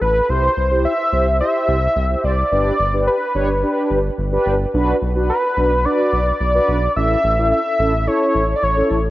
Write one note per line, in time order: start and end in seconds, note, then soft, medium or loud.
0.02 0.21 A1 loud
0.02 0.31 B4 medium
0.29 0.49 C2 loud
0.29 0.51 E4 medium
0.29 0.51 G4 medium
0.29 0.84 C5 loud
0.29 0.51 C5 medium
0.57 0.86 C2 loud
0.71 0.93 E4 medium
0.71 0.93 G4 medium
0.71 0.93 C5 medium
0.85 1.37 E5 loud
1.13 1.42 C2 loud
1.13 1.27 E4 medium
1.13 1.27 G4 medium
1.13 1.27 C5 medium
1.41 1.77 E4 medium
1.41 1.77 G4 medium
1.41 1.77 C5 medium
1.41 2.26 E5 loud
1.68 1.88 C2 loud
1.96 2.16 C2 loud
2.10 2.32 E4 medium
2.10 2.32 G4 medium
2.10 2.32 C5 medium
2.24 2.43 C2 loud
2.24 2.51 D5 medium
2.52 2.71 G1 loud
2.52 2.73 D4 medium
2.52 2.73 G4 medium
2.52 2.73 B4 medium
2.52 3.03 D5 loud
2.79 3.09 G1 loud
2.93 3.15 D4 medium
2.93 3.15 G4 medium
2.93 3.15 B4 medium
3.07 3.87 B4 medium
3.35 3.64 G1 medium
3.35 3.49 D4 medium
3.35 3.49 G4 medium
3.35 3.49 C#5 medium
3.63 3.99 D4 medium
3.63 3.99 G4 medium
3.63 3.99 B4 medium
3.91 4.10 G1 medium
4.18 4.38 G1 loud
4.32 4.54 D4 medium
4.32 4.54 G4 medium
4.32 4.54 B4 loud
4.46 4.66 G1 loud
4.74 4.93 B1 loud
4.74 4.95 D4 medium
4.74 4.95 F#4 medium
4.74 4.95 B4 loud
5.02 5.31 B1 loud
5.16 5.37 D4 medium
5.16 5.37 F#4 medium
5.16 5.37 B4 medium
5.29 5.86 B4 medium
5.57 5.86 B1 loud
5.57 5.71 D4 medium
5.57 5.71 F#4 medium
5.57 5.71 B4 medium
5.85 6.21 D4 medium
5.85 6.21 F#4 medium
5.85 6.21 B4 medium
5.85 6.40 D5 loud
6.13 6.32 B1 medium
6.40 6.60 B1 loud
6.40 6.92 D5 loud
6.54 6.76 D4 medium
6.54 6.76 F#4 medium
6.54 6.76 B4 medium
6.68 6.88 B1 loud
6.96 7.16 A1 loud
6.96 7.18 C#4 medium
6.96 7.18 E4 medium
6.96 7.18 A4 medium
6.96 7.48 E5 loud
7.24 7.53 A1 loud
7.38 7.59 C#4 medium
7.38 7.59 E4 medium
7.38 7.59 A4 medium
7.52 8.09 E5 loud
7.79 8.09 A1 loud
7.79 7.94 C#4 medium
7.79 7.94 E4 medium
7.79 7.94 A4 medium
8.07 8.43 C#4 medium
8.07 8.43 E4 medium
8.07 8.43 A4 medium
8.07 8.55 C#5 loud
8.35 8.54 A1 medium
8.56 8.64 D5 medium
8.63 8.82 A1 loud
8.63 9.05 C#5 medium
8.77 8.98 C#4 medium
8.77 8.98 E4 medium
8.77 8.98 A4 medium
8.91 9.10 A1 loud